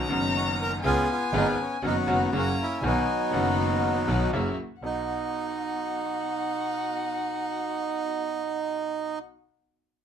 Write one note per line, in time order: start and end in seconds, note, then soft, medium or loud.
0.00 0.79 A#5 loud
0.08 0.80 F#1 loud
0.08 0.80 F#1 medium
0.08 0.80 F#2 medium
0.08 0.79 D#3 medium
0.08 0.80 B3 medium
0.08 0.80 C#4 medium
0.08 0.81 C#4 medium
0.08 0.80 D#4 loud
0.08 0.81 F#4 medium
0.36 0.47 F#4 medium
0.62 0.72 A#4 loud
0.83 1.05 C#2 medium
0.83 1.05 C#2 loud
0.83 1.05 C#3 medium
0.83 1.05 G#3 medium
0.83 1.05 B3 medium
0.83 1.80 B3 medium
0.83 1.05 C#4 medium
0.83 1.05 F4 medium
0.83 1.11 F4 medium
0.83 1.08 G#4 loud
0.83 1.83 G#5 medium
1.12 1.34 F4 loud
1.33 1.54 G#1 loud
1.33 1.55 G#1 medium
1.33 1.54 G#2 medium
1.33 1.54 C#3 medium
1.33 1.54 G#3 medium
1.33 1.54 B3 medium
1.33 1.55 B3 medium
1.33 1.54 C#4 medium
1.33 1.54 F4 loud
1.33 1.55 F4 medium
1.37 1.48 D#4 loud
1.61 1.85 C#4 medium
1.82 2.04 F#1 medium
1.82 2.04 F#2 medium
1.82 2.04 D#3 medium
1.82 2.04 F#3 medium
1.82 2.31 F#3 medium
1.82 2.04 B3 medium
1.82 2.11 B3 medium
1.82 2.04 D#4 medium
1.82 2.04 F#4 medium
1.82 2.32 F#5 loud
1.87 1.97 D#4 loud
2.07 2.28 F#1 medium
2.07 2.29 F#2 medium
2.07 2.29 D#3 medium
2.07 2.29 F#3 medium
2.07 2.29 B3 medium
2.07 2.29 D#4 medium
2.07 2.29 F#4 medium
2.12 2.34 B3 medium
2.32 2.53 F#1 loud
2.32 2.54 F#2 medium
2.32 2.54 C#3 medium
2.32 2.54 F#3 medium
2.32 2.54 A#3 medium
2.32 2.54 C#4 medium
2.32 2.54 F#4 medium
2.32 2.79 A#5 medium
2.37 2.81 A#3 medium
2.37 2.82 C#4 medium
2.37 2.48 F#4 medium
2.63 2.84 E4 medium
2.81 3.03 B1 medium
2.81 3.04 B1 medium
2.81 3.04 B2 medium
2.81 3.04 D#3 medium
2.81 3.04 F#3 medium
2.81 3.04 B3 medium
2.81 3.04 D#4 medium
2.81 3.04 F#4 medium
2.81 3.34 G#5 medium
2.86 4.30 F#3 medium
2.86 4.30 B3 medium
2.86 4.31 D#4 medium
3.31 4.03 F#1 loud
3.31 4.04 F#1 medium
3.31 4.04 F#2 medium
3.31 4.03 D#3 medium
3.31 4.04 F#3 medium
3.31 4.04 B3 medium
3.31 4.05 B3 medium
3.31 4.04 D#4 medium
3.31 4.04 F#4 loud
3.31 3.82 F#5 medium
3.36 4.05 F#4 medium
4.06 4.28 B1 loud
4.06 4.29 B1 medium
4.06 4.29 B2 medium
4.06 4.29 D#3 medium
4.06 4.29 F#3 medium
4.06 4.29 B3 medium
4.06 4.29 D#4 medium
4.06 4.29 F#4 medium
4.31 4.53 F#1 loud
4.31 4.54 F#2 medium
4.31 4.54 C#3 medium
4.31 4.54 F#3 medium
4.31 4.54 A#3 medium
4.31 4.54 E4 medium
4.31 4.54 F#4 loud
4.82 5.03 B1 medium
4.82 9.17 B1 medium
4.82 9.16 B3 soft
4.82 9.17 B3 medium
4.82 9.16 D#4 soft
4.82 9.17 D#4 soft
4.82 9.19 D#4 medium
4.82 9.16 F#4 medium
4.82 9.17 F#4 medium
4.82 9.15 F#5 medium